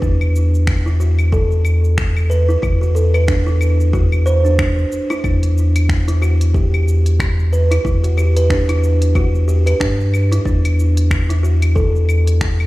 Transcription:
0.02 E2 D4, kick, shaker
0.21 claves, shaker
0.36 shaker
0.55 shaker
0.67 finger snap, kick, claves, shaker
0.86 E4, shaker
1.00 F#4, shaker
1.19 claves, shaker
1.32 A4, kick, shaker
1.51 shaker
1.65 claves, shaker
1.84 shaker
1.98 finger snap, kick, shaker
2.17 claves, shaker
2.30 B4, shaker
2.49 E4, shaker
2.62 E2 E4, kick, claves, shaker
2.81 F#4, shaker
2.95 A4, shaker
3.14 B4, claves, shaker
3.28 D4, finger snap, kick, shaker
3.47 E4, shaker
3.61 claves, shaker
3.80 shaker
3.93 E2 F#4, kick, shaker
4.12 claves, shaker
4.26 C5, shaker
4.45 D4, shaker
4.59 D4, finger snap, kick, claves, shaker
4.78 shaker
4.92 shaker
5.10 E4, claves, shaker
5.24 E2 D4, kick, claves, shaker
5.43 closed hi-hat, shaker
5.58 shaker
5.76 closed hi-hat, claves, shaker
5.89 finger snap, kick, shaker
6.08 E4, closed hi-hat, shaker
6.22 F#4, claves, shaker
6.41 closed hi-hat, shaker
6.54 G4, kick, shaker
6.74 claves, shaker
6.88 shaker
7.06 closed hi-hat, shaker
7.20 finger snap, kick, claves, shaker
7.39 shaker
7.53 B4, shaker
7.71 E4, closed hi-hat, claves, shaker
7.85 E2 E4, kick, shaker
8.04 F#4, closed hi-hat, shaker
8.17 G4, claves, shaker
8.36 B4, closed hi-hat, shaker
8.50 D4, finger snap, kick, shaker
8.69 E4, closed hi-hat, claves, shaker
8.84 shaker
9.02 closed hi-hat, shaker
9.15 F#4, kick, claves, shaker
9.35 shaker
9.48 G4, shaker
9.66 B4, closed hi-hat, claves, shaker
9.80 G2 D4, finger snap, kick, shaker
10.01 shaker
10.14 claves, shaker
10.31 E4, closed hi-hat, shaker
10.45 E2 D4, kick, shaker
10.65 closed hi-hat, claves, shaker
10.79 shaker
10.97 closed hi-hat, shaker
11.11 finger snap, kick, claves, shaker
11.29 E4, closed hi-hat, shaker
11.43 F#4, shaker
11.62 closed hi-hat, claves, shaker
11.75 A4, kick, shaker
11.96 shaker
12.09 claves, shaker
12.27 closed hi-hat, shaker
12.41 finger snap, kick, shaker
12.60 claves, shaker

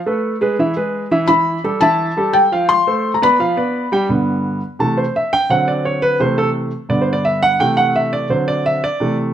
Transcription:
0.06 A3 A4 B4
0.41 G#3 G#4 B4
0.59 E3 E4 E5
0.76 G#3 G#4 B4
1.11 E3 E4 E5
1.27 E3 E4 E5 B5
1.64 G3 G4 A4
1.81 E3 E4 E5 A5
2.17 G3 G4 A4
2.33 G5
2.52 F3 F4 F5
2.69 C6
2.87 A3 A4 C5
3.14 A#5
3.22 B3 B4 D5 B5
3.39 F3 F4 F5
3.57 B3 B4 D5
3.92 G3 G4 G5
4.09 G2 D3 B3
4.79 C3 E3 A3 A5
4.97 C5
5.16 E5
5.33 G5
5.50 D3 F#3 C4 F#5
5.68 D5
5.85 C#5
6.02 B4
6.20 C3 E3 A3 C5
6.38 A4
6.89 G2 D3 B3 D5
7.01 C5
7.13 D5
7.25 E5
7.43 F#5
7.59 C3 E3 A3 G5
7.77 F#5
7.96 E5
8.13 D5
8.29 D3 F#3 C4 C5
8.48 D5
8.66 E5
8.84 D5
9.00 C3 E3 A3

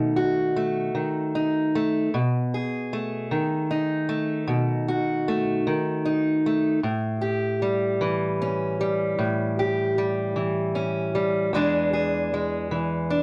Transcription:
Already playing: B2 D#3 A3 D#4 G#4
0.16 F#4
0.56 A3
0.95 D#3
1.35 D#4
1.75 A3
2.14 B2
2.54 G#4
2.93 A3
3.31 D#3
3.71 D#4
4.09 A3
4.48 B2
4.88 F#4
5.28 A3
5.67 D#3
6.05 D#4
6.46 A3
6.83 A2
7.21 G4
7.62 G3
8.01 E3
8.42 C#4
8.81 G3
9.19 A2
9.59 G4
9.98 G3
10.36 E3
10.75 C#4
11.15 G3
11.53 E2 E3 G#3 D4 G#4
11.93 G#4
12.34 G#3
12.71 E3
13.10 D4

